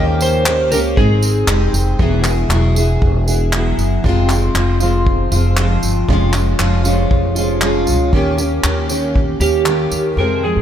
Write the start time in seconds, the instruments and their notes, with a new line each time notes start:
Already playing: upright bass D#2, steel-string acoustic guitar D#3 A#3 C#4 G4
0.21 electric slide guitar C5, tambourine
0.46 steel-string acoustic guitar D#3 A#3 C#4 G4, clap
0.71 upright bass C#2, steel-string acoustic guitar A#3 C#4 G4, electric slide guitar A#4, tambourine
0.97 upright bass G#1, steel-string acoustic guitar G#3 C4 D#4, electric slide guitar G#4, kick
1.23 tambourine
1.47 upright bass F1, steel-string acoustic guitar G#3 C4 D#4, clap
1.51 steel-string acoustic guitar G4
1.73 upright bass F1, tambourine
1.99 upright bass E1, steel-string acoustic guitar E3 F#3 B3 E4 G#4, kick
2.24 steel-string acoustic guitar B3 E4 G#4, clap, tambourine
2.49 upright bass E1, steel-string acoustic guitar F#3 B3, clap
2.53 steel-string acoustic guitar E4 G#4
2.76 steel-string acoustic guitar B3 E4 G#4, tambourine
3.02 upright bass E1, kick
3.28 steel-string acoustic guitar B3 E4 G#4, tambourine
3.53 steel-string acoustic guitar F#3 B3 E4 G#4, clap
3.78 upright bass F#1, tambourine
4.04 upright bass F1, steel-string acoustic guitar F2 C3 F3 G#3 C4 F4, kick
4.29 steel-string acoustic guitar F3 G#3 C4 F4, clap, tambourine
4.55 upright bass F1, steel-string acoustic guitar F3 G#3 C4 F4, clap
4.80 steel-string acoustic guitar F3 G#3 C4 F4, tambourine
5.07 kick
5.32 upright bass F1, steel-string acoustic guitar F3 G#3 C4 F4, tambourine
5.57 steel-string acoustic guitar F3 G#3 C4 F4, clap
5.83 upright bass G1, tambourine
6.08 upright bass F1, steel-string acoustic guitar F2 C3 F3 G#3 C#4 F4, kick
6.33 steel-string acoustic guitar F3 G#3 C#4 F4, clap, tambourine
6.59 upright bass F1, steel-string acoustic guitar F3 G#3 C#4 F4, clap
6.84 steel-string acoustic guitar F3 G#3 C#4 F4, tambourine
7.11 upright bass F1, kick
7.35 steel-string acoustic guitar F3 G#3 C#4 F4, tambourine
7.61 steel-string acoustic guitar F3 G#3 C#4 F4, clap
7.87 upright bass C#2, tambourine
8.13 upright bass D#2, steel-string acoustic guitar D#3 A#3 C#4 G4, kick
8.38 steel-string acoustic guitar A#3 C#4 G4, tambourine
8.64 upright bass D#2, steel-string acoustic guitar D#3 A#3 C#4 G4, clap
8.89 steel-string acoustic guitar A#3 C#4 G4, tambourine
9.16 kick
9.40 upright bass D#2, steel-string acoustic guitar A#3 C#4 G4, electric slide guitar G4, tambourine
9.65 steel-string acoustic guitar D#3 A#3 C#4 G4, clap
9.91 upright bass D#2, tambourine
10.17 upright bass F2, steel-string acoustic guitar F2 C3 F3 G#3 C4 G#4, electric slide guitar A#4
10.43 steel-string acoustic guitar F3 G#3 C4 G#4, electric slide guitar G#4
10.56 upright bass G#2